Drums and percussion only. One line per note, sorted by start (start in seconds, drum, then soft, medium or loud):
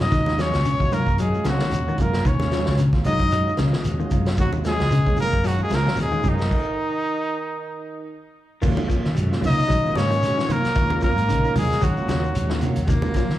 0.00 snare medium
0.00 closed hi-hat medium
0.00 shekere soft
0.11 kick medium
0.11 snare soft
0.11 closed hi-hat medium
0.11 low conga medium
0.11 shekere medium
0.26 snare soft
0.26 high conga medium
0.26 shekere soft
0.39 snare medium
0.39 closed hi-hat medium
0.39 shekere medium
0.53 snare medium
0.53 closed hi-hat soft
0.53 shekere soft
0.65 closed hi-hat medium
0.65 low conga medium
0.65 shekere medium
0.80 kick medium
0.80 high conga medium
0.80 shekere soft
0.92 closed hi-hat medium
0.92 high conga medium
0.92 low conga medium
0.92 shekere medium
1.07 kick medium
1.07 shekere soft
1.18 closed hi-hat medium
1.18 shekere medium
1.34 shekere soft
1.44 snare medium
1.44 closed hi-hat soft
1.44 high conga loud
1.44 shekere medium
1.59 snare medium
1.59 shekere soft
1.71 closed hi-hat medium
1.71 high conga medium
1.71 shekere medium
1.88 shekere soft
1.98 kick medium
1.98 closed hi-hat medium
1.98 low conga medium
1.98 shekere medium
2.13 snare medium
2.13 shekere soft
2.25 kick medium
2.25 closed hi-hat medium
2.25 low conga medium
2.25 shekere medium
2.40 snare soft
2.40 high conga loud
2.40 shekere soft
2.52 snare medium
2.52 closed hi-hat medium
2.52 shekere medium
2.66 snare medium
2.66 shekere soft
2.77 closed hi-hat medium
2.77 shekere medium
2.93 kick medium
2.93 snare soft
2.93 high conga medium
2.93 shekere soft
3.04 closed hi-hat medium
3.04 high conga medium
3.04 low conga medium
3.04 shekere medium
3.19 kick medium
3.19 closed hi-hat medium
3.19 shekere soft
3.31 closed hi-hat medium
3.31 shekere medium
3.48 shekere soft
3.57 snare medium
3.57 closed hi-hat medium
3.57 high conga loud
3.57 shekere medium
3.73 snare medium
3.73 shekere soft
3.84 closed hi-hat medium
3.84 high conga medium
3.84 shekere medium
4.00 shekere soft
4.11 kick medium
4.11 closed hi-hat medium
4.11 low conga medium
4.11 shekere medium
4.26 snare medium
4.26 closed hi-hat medium
4.26 shekere soft
4.37 kick medium
4.37 closed hi-hat medium
4.37 low conga medium
4.37 shekere medium
4.52 high conga loud
4.52 shekere soft
4.64 snare medium
4.64 closed hi-hat medium
4.64 shekere medium
4.79 snare medium
4.79 closed hi-hat medium
4.79 shekere soft
4.91 closed hi-hat medium
4.91 low conga medium
4.91 shekere medium
5.06 kick medium
5.06 high conga medium
5.06 shekere soft
5.17 closed hi-hat soft
5.17 high conga medium
5.17 low conga medium
5.17 shekere medium
5.32 kick medium
5.32 shekere soft
5.44 closed hi-hat medium
5.44 shekere medium
5.59 high conga medium
5.59 shekere soft
5.70 snare medium
5.70 closed hi-hat medium
5.70 high conga medium
5.70 shekere medium
5.85 snare medium
5.85 shekere soft
5.96 closed hi-hat medium
5.96 high conga medium
5.96 shekere medium
6.12 shekere soft
6.23 kick medium
6.23 closed hi-hat soft
6.23 high conga medium
6.23 low conga medium
6.23 shekere medium
6.38 snare medium
6.38 shekere soft
6.51 kick medium
6.51 crash medium
8.62 kick medium
8.62 crash medium
8.62 low conga medium
8.62 shekere medium
8.77 high conga loud
8.77 shekere soft
8.90 kick medium
8.90 closed hi-hat medium
8.90 shekere medium
9.05 snare soft
9.05 shekere soft
9.16 closed hi-hat medium
9.16 low conga medium
9.16 shekere medium
9.32 snare soft
9.32 shekere soft
9.42 open hi-hat medium
9.42 high conga medium
9.42 low conga medium
9.42 shekere medium
9.59 shekere soft
9.70 kick medium
9.70 closed hi-hat medium
9.70 shekere medium
9.83 high conga medium
9.83 shekere soft
9.95 snare medium
9.95 closed hi-hat medium
9.95 high conga medium
9.95 shekere medium
10.11 closed hi-hat medium
10.11 shekere soft
10.23 snare soft
10.23 closed hi-hat medium
10.23 high conga medium
10.23 shekere medium
10.38 snare medium
10.38 shekere soft
10.49 closed hi-hat medium
10.49 high conga medium
10.49 low conga medium
10.49 shekere medium
10.64 snare soft
10.64 closed hi-hat medium
10.64 shekere soft
10.75 kick medium
10.75 closed hi-hat medium
10.75 shekere medium
10.90 high conga loud
10.90 shekere soft
11.01 kick medium
11.01 closed hi-hat medium
11.01 shekere medium
11.17 closed hi-hat medium
11.17 shekere soft
11.29 closed hi-hat medium
11.29 low conga medium
11.29 shekere medium
11.45 shekere soft
11.55 open hi-hat medium
11.55 high conga medium
11.55 low conga medium
11.55 shekere medium
11.71 snare soft
11.71 shekere soft
11.82 kick medium
11.82 closed hi-hat medium
11.82 shekere medium
11.97 high conga medium
11.97 shekere soft
12.09 snare medium
12.09 closed hi-hat medium
12.09 high conga loud
12.09 shekere medium
12.25 shekere soft
12.35 closed hi-hat medium
12.35 high conga medium
12.35 shekere medium
12.49 snare medium
12.49 shekere soft
12.61 closed hi-hat medium
12.61 low conga medium
12.61 shekere medium
12.76 closed hi-hat medium
12.76 shekere soft
12.87 kick medium
12.87 closed hi-hat medium
12.87 low conga medium
12.87 shekere medium
13.02 high conga loud
13.02 shekere soft
13.14 kick medium
13.14 snare soft
13.14 closed hi-hat medium
13.14 shekere medium
13.29 snare soft
13.29 shekere soft